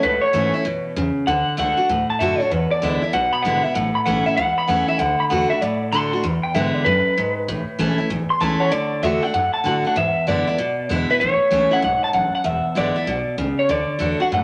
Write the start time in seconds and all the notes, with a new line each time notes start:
0.03 C#2 A2 B4
0.21 C#5, muted upright bass stroke
0.33 G#2 E3 A3 C#4 E4
0.54 C#4 E4
0.65 F#2 B2
0.96 E2 C#3
1.16 muted upright bass stroke
1.27 D2 D3 F#5
1.48 muted upright bass stroke
1.57 C#2 D3 A3 D4 F#4 F#5
1.77 D4 F#4, muted upright bass stroke
1.89 D2 A2
2.09 A5, muted upright bass stroke
2.19 F#2 D3 A3 D4 F#4 E5
2.40 D4 F#4 C#5, muted upright bass stroke
2.51 E2 B4
2.71 D5, muted upright bass stroke
2.82 D2 D3 G#3 B3 E4
3.02 B3 E4, muted upright bass stroke
3.13 B1 B2 F#5
3.33 B5, muted upright bass stroke
3.42 G#1 D3 G#3 B3 E4 F#5
3.63 B3 E4 E5
3.75 A1 A2 F#5
3.95 B5, muted upright bass stroke
4.05 B1 E3 A3 C#4 E4 F#5
4.26 C#4 E4 E5
4.37 C#2 E2 F#5
4.58 B5, muted upright bass stroke
4.68 E2 E3 A3 C#4 E4 F#5
4.88 C#4 E4 E5
4.98 D2 D3 F#5
5.20 B5, muted upright bass stroke
5.30 E2 D3 A3 D4 F#4 F#5
5.50 D4 F#4 E5, muted upright bass stroke
5.61 F#2 A2 D5
5.82 muted upright bass stroke
5.92 D#2 D3 A3 D4 F#4 C6
6.13 D4 F#4
6.24 E2
6.43 G5, muted upright bass stroke
6.54 G#2 D3 G#3 B3 E4 E5
6.74 D5
6.85 F#2 B4
7.07 muted upright bass stroke
7.17 E2 G#2
7.37 muted upright bass stroke
7.48 A1 A2
7.68 muted upright bass stroke
7.79 A#1 E3 A3 C#4 E4
7.98 C#4 E4, muted upright bass stroke
8.10 A1 E2
8.30 C6, muted upright bass stroke
8.40 C#2 E3 A3 C#4 E4 A5
8.60 C#5 F#5
8.72 D2 D3 D5
8.93 muted upright bass stroke
9.03 E2 D3 A3 D4 F#4 E5
9.22 D4 F#4 F#5
9.34 F#2 A2 F#5
9.54 A5, muted upright bass stroke
9.64 A2 D3 A3 D4 F#4 F#5
9.85 D4 F#4 F#5, muted upright bass stroke
9.96 E2 G#2 E5
10.17 muted upright bass stroke
10.27 F#2 D3 G#3 B3 E4 D5
10.47 B3 E4
10.58 G#2 B2
10.79 muted upright bass stroke
10.89 E2 D3 G#3 B3 E4
11.10 B3 E4 B4, muted upright bass stroke
11.20 A1 A2 C#5
11.42 muted upright bass stroke
11.51 C#2 E3 A3 C#4 E4
11.71 C#4 E4 F#5
11.82 B1 G#2 F#5
12.03 A5, muted upright bass stroke
12.13 A1 F#2 F#5
12.34 F#5, muted upright bass stroke
12.44 E1 E2 E5
12.66 muted upright bass stroke
12.75 G#1 D3 G#3 B3 E4 D5
12.96 B3 E4
13.07 B1 B2
13.27 muted upright bass stroke
13.38 C#2 C#3
13.58 C#5, muted upright bass stroke
13.69 D2 D3 D5
13.90 muted upright bass stroke
13.99 E2 D3 A3 D4 F#4
14.20 D4 F#4 F#5
14.32 F#2 A2 F#5